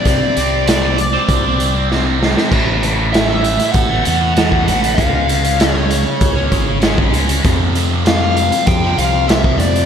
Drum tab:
CC |----------------|x---------------|----------------|----------------|
HH |x-x-x-x-x-x-----|--x-x-xxx-x-x-xx|x-xxx-x-x-x-x-xx|x-x-x-xxx-x-x-xx|
SD |----o-------o-oo|----o--o----o---|----o-------o---|----o-------o---|
BD |o-------o-------|o-------o----o--|o-------o-o--o--|o-------o----o--|